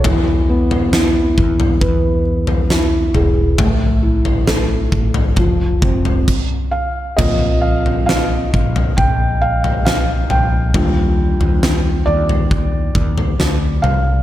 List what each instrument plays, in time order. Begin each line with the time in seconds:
0.04 fretless electric bass E2, felt piano E3, kick, floor tom
0.49 felt piano B3
0.71 floor tom
0.92 felt piano E4, snare
1.38 fretless electric bass E2, kick
1.60 floor tom
1.81 fretless electric bass E2, felt piano B4, kick
2.47 floor tom
2.70 felt piano E4, snare
3.14 fretless electric bass E1, felt piano G#4, floor tom
3.58 fretless electric bass A1, felt piano A3, kick, floor tom
4.03 felt piano E4
4.25 fretless electric bass A1, floor tom
4.47 felt piano A4, snare
4.92 fretless electric bass A1, kick
5.14 floor tom
5.36 fretless electric bass F1, felt piano F3, kick, floor tom
5.82 fretless electric bass F1, felt piano C4, kick
6.05 floor tom
6.28 kick, crash
6.71 felt piano F5
7.17 fretless electric bass A#1, felt piano A#3 C4 F4 D#5, kick, floor tom, crash
7.61 felt piano F5
7.86 floor tom
8.06 felt piano F5, snare
8.54 fretless electric bass A#1, kick
8.76 floor tom
8.97 fretless electric bass A#1, felt piano G5, kick
9.41 felt piano F5
9.64 floor tom
9.85 felt piano F5, snare
10.30 fretless electric bass A#1, felt piano G5, floor tom
10.74 fretless electric bass D#2, felt piano G3 D4 F4, kick, floor tom
11.40 fretless electric bass D#2, floor tom
11.63 snare
12.06 fretless electric bass D#2, felt piano D5
12.29 floor tom
12.51 kick
12.95 fretless electric bass D#2, kick
13.18 floor tom
13.39 fretless electric bass D2, snare
13.82 fretless electric bass C2, felt piano F5, floor tom